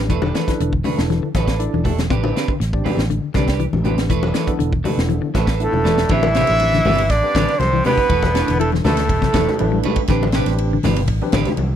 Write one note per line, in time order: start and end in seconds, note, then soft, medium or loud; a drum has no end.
0.00 0.12 A1 medium
0.00 0.10 C4 medium
0.00 0.11 D4 medium
0.00 0.10 G4 medium
0.00 0.11 B4 medium
0.10 0.31 E1 medium
0.10 0.19 E3 medium
0.10 0.22 A3 medium
0.10 0.22 D4 medium
0.10 0.21 A4 medium
0.10 0.20 B4 medium
0.10 kick medium
0.10 closed hi-hat medium
0.22 0.32 D3 medium
0.22 0.33 D4 soft
0.22 0.34 A4 soft
0.22 0.34 B4 soft
0.22 high conga medium
0.34 0.54 E3 medium
0.34 0.50 A3 medium
0.34 0.50 D4 medium
0.34 0.50 A4 medium
0.34 0.50 B4 medium
0.34 snare medium
0.34 closed hi-hat medium
0.48 0.72 D4 medium
0.48 0.71 E4 medium
0.48 0.72 A4 medium
0.48 0.72 B4 loud
0.48 kick medium
0.48 snare soft
0.48 closed hi-hat medium
0.48 high conga medium
0.60 0.81 E1 medium
0.60 0.80 D3 medium
0.60 closed hi-hat medium
0.73 kick medium
0.84 1.04 D3 medium
0.84 0.99 A3 medium
0.84 1.00 D4 medium
0.84 1.00 B4 medium
0.84 muted clean electric guitar stroke medium
0.84 open hi-hat medium
0.84 high conga medium
0.84 low conga medium
0.97 1.19 E1 loud
0.97 1.27 D4 medium
0.97 1.27 E4 medium
0.97 1.27 A4 medium
0.97 1.28 B4 medium
0.97 snare medium
1.10 1.19 E3 medium
1.10 snare soft
1.10 closed hi-hat medium
1.10 high conga medium
1.23 1.41 D3 medium
1.34 1.66 A1 medium
1.34 1.48 A3 medium
1.34 1.47 D4 medium
1.34 1.46 A4 medium
1.34 1.45 B4 medium
1.34 kick medium
1.34 snare soft
1.34 closed hi-hat medium
1.34 high conga medium
1.46 1.62 D4 soft
1.46 1.62 A4 soft
1.46 1.61 B4 soft
1.46 kick medium
1.46 snare medium
1.46 closed hi-hat soft
1.59 1.83 D4 medium
1.59 1.83 E4 medium
1.59 1.84 A4 medium
1.59 1.84 D5 medium
1.59 closed hi-hat medium
1.74 2.10 E1 medium
1.74 1.83 E3 medium
1.74 high conga medium
1.84 2.04 E3 medium
1.84 2.00 A3 medium
1.84 2.00 D4 medium
1.84 2.00 A4 medium
1.84 muted clean electric guitar stroke medium
1.84 kick medium
1.84 open hi-hat medium
1.84 low conga medium
1.98 snare medium
1.98 closed hi-hat soft
1.98 high conga medium
2.10 2.31 A1 medium
2.10 2.20 C3 medium
2.10 2.40 C4 medium
2.10 2.23 C4 medium
2.10 2.40 D4 medium
2.10 2.23 D4 medium
2.10 2.40 G4 medium
2.10 2.22 G4 medium
2.10 2.40 B4 medium
2.10 2.21 B4 medium
2.10 kick medium
2.10 closed hi-hat medium
2.22 2.42 D3 medium
2.22 2.35 D4 soft
2.22 2.35 G4 soft
2.22 2.35 B4 soft
2.22 high conga medium
2.36 2.50 C4 medium
2.36 2.51 D4 medium
2.36 2.51 G4 medium
2.36 2.51 B4 medium
2.36 snare medium
2.36 closed hi-hat soft
2.48 2.57 D3 medium
2.48 kick medium
2.60 2.81 A1 medium
2.60 muted clean electric guitar stroke medium
2.60 snare soft
2.60 closed hi-hat medium
2.73 3.03 C4 medium
2.73 3.03 D4 medium
2.73 3.03 G4 medium
2.73 3.03 D5 medium
2.73 kick medium
2.84 3.00 C4 medium
2.84 3.00 D4 medium
2.84 3.00 G4 medium
2.84 3.00 B4 medium
2.84 open hi-hat medium
2.84 high conga medium
2.84 low conga medium
2.97 3.18 A1 loud
2.97 snare medium
3.10 3.29 D3 medium
3.10 closed hi-hat medium
3.34 3.66 C2 medium
3.34 3.54 D3 medium
3.34 3.48 C4 medium
3.34 3.60 C4 medium
3.34 3.48 D4 medium
3.34 3.60 D4 medium
3.34 3.47 G4 medium
3.34 3.60 G4 medium
3.34 3.47 B4 medium
3.34 3.60 D5 medium
3.34 kick medium
3.34 snare soft
3.34 closed hi-hat soft
3.34 high conga medium
3.48 3.63 D4 soft
3.48 3.63 G4 soft
3.48 3.63 B4 soft
3.48 kick medium
3.48 snare medium
3.48 closed hi-hat soft
3.59 3.79 E3 medium
3.59 closed hi-hat medium
3.73 4.12 A1 medium
3.73 high conga medium
3.73 low conga medium
3.84 4.00 C4 medium
3.84 4.10 C4 medium
3.84 4.00 D4 medium
3.84 4.10 D4 medium
3.84 4.00 G4 medium
3.84 4.10 G4 medium
3.84 4.01 B4 medium
3.84 4.11 B4 medium
3.84 closed hi-hat soft
3.84 low conga medium
3.98 snare medium
3.98 closed hi-hat soft
3.98 high conga medium
4.09 4.31 E1 medium
4.09 4.20 E3 medium
4.09 4.22 A3 medium
4.09 4.22 D4 medium
4.09 4.22 A4 medium
4.09 4.20 B4 medium
4.09 kick medium
4.09 closed hi-hat medium
4.22 4.34 D4 soft
4.22 4.33 A4 soft
4.22 4.34 B4 soft
4.22 high conga loud
4.34 4.53 E3 medium
4.34 4.50 A3 medium
4.34 4.50 D4 medium
4.34 4.50 A4 medium
4.34 4.51 B4 medium
4.34 snare medium
4.34 closed hi-hat soft
4.47 4.71 B3 medium
4.47 4.71 D4 medium
4.47 4.72 E4 medium
4.47 4.72 A4 medium
4.47 kick medium
4.47 closed hi-hat medium
4.47 high conga medium
4.59 4.81 E1 medium
4.59 4.78 D3 medium
4.59 closed hi-hat medium
4.73 kick medium
4.84 5.03 D3 medium
4.84 5.00 A3 medium
4.84 5.00 D4 medium
4.84 5.00 A4 medium
4.84 5.01 B4 medium
4.84 open hi-hat medium
4.84 high conga medium
4.84 low conga medium
4.98 5.19 E1 medium
4.98 5.28 B3 medium
4.98 5.28 D4 medium
4.98 5.28 E4 medium
4.98 5.28 A4 medium
4.98 snare medium
5.09 5.19 E3 medium
5.09 closed hi-hat medium
5.09 high conga medium
5.22 5.41 D3 medium
5.34 5.67 A1 medium
5.34 5.47 A3 medium
5.34 5.46 D4 medium
5.34 5.46 A4 medium
5.34 5.45 B4 medium
5.34 kick medium
5.34 snare soft
5.34 closed hi-hat medium
5.34 high conga medium
5.46 5.63 D4 soft
5.46 5.62 A4 medium
5.46 5.62 B4 medium
5.46 kick medium
5.46 snare medium
5.46 closed hi-hat soft
5.60 6.08 A2 medium
5.60 6.08 A3 medium
5.60 5.84 B3 medium
5.60 5.84 D4 medium
5.60 5.84 E4 medium
5.60 5.84 A4 medium
5.60 6.08 A4 medium
5.60 5.84 E5 medium
5.60 closed hi-hat medium
5.73 6.04 E1 medium
5.73 5.82 E3 medium
5.73 high conga medium
5.73 low conga medium
5.84 6.04 E3 medium
5.84 6.00 A3 medium
5.84 6.00 D4 medium
5.84 6.00 A4 medium
5.84 6.00 B4 medium
5.84 6.08 D5 medium
5.84 snare soft
5.84 low conga medium
5.98 snare medium
5.98 high conga medium
6.09 6.42 A1 loud
6.09 6.30 D3 loud
6.09 7.14 E3 loud
6.09 6.22 C4 medium
6.09 6.25 C4 medium
6.09 6.22 D4 medium
6.09 6.26 D4 medium
6.09 7.11 E4 loud
6.09 6.26 G4 medium
6.09 6.23 G4 medium
6.09 6.23 B4 medium
6.09 6.26 B4 medium
6.09 kick loud
6.09 ride bell medium
6.13 7.12 E5 loud
6.23 high conga loud
6.34 6.55 C3 medium
6.34 6.50 C4 medium
6.34 6.77 C4 medium
6.34 6.77 D4 medium
6.34 6.50 D4 medium
6.34 6.77 G4 medium
6.34 6.51 G4 medium
6.34 6.51 B4 medium
6.34 6.77 C5 medium
6.34 snare medium
6.34 ride bell medium
6.47 6.80 A1 loud
6.47 snare soft
6.47 ride bell medium
6.60 ride bell medium
6.60 high conga medium
6.73 6.83 D3 medium
6.73 snare soft
6.73 high conga medium
6.85 7.10 G1 loud
6.85 6.95 E3 medium
6.85 7.00 C4 medium
6.85 7.00 D4 medium
6.85 7.01 G4 medium
6.85 7.01 B4 medium
6.85 open hi-hat medium
6.85 high conga medium
6.85 low conga medium
6.98 muted clean electric guitar stroke medium
6.98 ride bell soft
7.09 7.21 A1 loud
7.09 7.62 D3 medium
7.09 7.63 D4 loud
7.09 7.60 D5 loud
7.09 kick medium
7.09 snare soft
7.09 ride bell medium
7.23 7.53 C4 medium
7.23 7.52 D4 medium
7.23 7.53 G4 medium
7.23 7.53 B4 medium
7.35 7.45 A1 medium
7.35 7.54 D3 medium
7.35 7.50 C4 medium
7.35 7.50 D4 medium
7.35 7.51 G4 medium
7.35 7.51 B4 medium
7.35 kick medium
7.35 snare medium
7.35 ride bell medium
7.35 high conga loud
7.48 snare soft
7.48 ride bell soft
7.59 7.81 C2 medium
7.59 7.85 C3 medium
7.59 7.86 C4 medium
7.59 7.84 C5 loud
7.59 snare soft
7.59 ride bell medium
7.59 high conga loud
7.73 7.82 E3 medium
7.84 8.04 C3 medium
7.84 8.56 B3 medium
7.84 8.08 C4 medium
7.84 8.00 C4 medium
7.84 8.09 D4 medium
7.84 8.01 D4 medium
7.84 8.09 G4 medium
7.84 8.01 G4 medium
7.84 8.09 B4 medium
7.84 8.01 B4 medium
7.84 8.56 B4 loud
7.84 open hi-hat medium
7.84 low conga medium
7.89 8.58 B2 medium
7.98 kick medium
8.09 8.42 E1 loud
8.09 8.29 E3 medium
8.09 8.25 A3 medium
8.09 8.25 A4 medium
8.09 8.25 B4 medium
8.09 muted clean electric guitar stroke medium
8.09 kick medium
8.09 ride bell medium
8.22 kick medium
8.22 snare soft
8.22 high conga medium
8.34 8.50 A3 medium
8.34 8.82 D4 medium
8.34 8.50 D4 medium
8.34 8.82 E4 medium
8.34 8.82 A4 medium
8.34 8.50 A4 medium
8.34 8.83 B4 medium
8.34 8.50 B4 medium
8.34 snare medium
8.34 ride bell medium
8.48 8.79 E1 loud
8.48 8.57 D3 medium
8.48 snare soft
8.48 ride bell medium
8.59 8.73 A2 medium
8.59 8.69 E3 medium
8.59 8.71 A3 medium
8.59 8.71 A4 medium
8.59 ride bell medium
8.72 8.92 E3 medium
8.72 snare soft
8.72 high conga medium
8.84 9.11 D2 loud
8.84 9.81 A2 medium
8.84 9.80 A3 medium
8.84 9.00 A3 medium
8.84 9.00 D4 medium
8.84 9.80 A4 medium
8.84 9.00 A4 medium
8.84 9.00 B4 medium
8.84 snare soft
8.84 open hi-hat medium
8.84 high conga medium
8.84 low conga medium
8.97 9.16 D3 medium
8.97 snare soft
8.97 ride bell medium
9.09 9.20 E1 loud
9.09 kick medium
9.09 ride bell medium
9.22 9.31 C3 medium
9.22 kick medium
9.22 snare soft
9.22 high conga medium
9.32 9.45 E1 medium
9.32 9.53 E3 medium
9.32 9.49 A3 medium
9.32 9.49 D4 medium
9.32 9.46 D4 medium
9.32 9.47 E4 medium
9.32 9.49 A4 medium
9.32 9.46 A4 medium
9.32 9.49 B4 medium
9.32 9.47 B4 medium
9.32 kick medium
9.32 snare medium
9.32 ride bell medium
9.32 high conga loud
9.48 snare soft
9.48 low conga medium
9.59 9.81 A1 medium
9.59 9.84 D4 medium
9.59 9.84 E4 medium
9.59 9.84 A4 medium
9.59 9.84 B4 loud
9.59 ride bell medium
9.59 high conga loud
9.72 9.91 G3 medium
9.83 9.99 A3 medium
9.83 9.99 D4 medium
9.83 10.00 A4 medium
9.83 10.00 B4 medium
9.83 ride bell medium
9.83 low conga medium
9.96 kick medium
9.96 ride bell medium
10.07 10.41 A1 loud
10.07 10.28 D3 loud
10.07 10.24 C4 medium
10.07 10.22 C4 loud
10.07 10.25 D4 medium
10.07 10.22 D4 medium
10.07 10.25 G4 medium
10.07 10.22 G4 medium
10.07 10.24 B4 medium
10.07 10.22 B4 loud
10.07 kick medium
10.07 snare soft
10.07 ride bell medium
10.23 high conga loud
10.32 10.53 C3 medium
10.32 10.50 C4 medium
10.32 10.77 C4 loud
10.32 10.49 D4 medium
10.32 10.76 D4 medium
10.32 10.50 G4 medium
10.32 10.77 G4 loud
10.32 10.77 B4 loud
10.32 10.50 B4 medium
10.32 snare medium
10.32 ride bell medium
10.46 10.77 A1 loud
10.46 snare soft
10.46 ride bell medium
10.58 ride bell medium
10.73 10.82 D3 medium
10.83 11.08 G1 loud
10.83 10.94 E3 medium
10.83 10.99 C4 medium
10.83 10.99 D4 medium
10.83 10.99 G4 medium
10.83 11.00 B4 medium
10.83 snare soft
10.83 open hi-hat medium
10.83 high conga medium
10.83 low conga medium
10.96 11.16 C3 medium
10.96 ride bell medium
11.07 11.19 A1 loud
11.07 kick medium
11.07 ride bell medium
11.22 11.52 C4 medium
11.22 11.51 D4 medium
11.22 11.52 G4 medium
11.22 11.52 B4 loud
11.22 high conga medium
11.32 11.44 A1 medium
11.32 11.53 D3 medium
11.32 11.48 C4 medium
11.32 11.49 D4 medium
11.32 11.49 G4 medium
11.32 11.49 B4 medium
11.32 kick medium
11.32 snare medium
11.32 ride bell medium
11.32 high conga loud
11.45 snare soft
11.45 ride bell medium
11.45 low conga medium
11.57 11.76 C2 medium
11.57 ride bell medium
11.57 high conga loud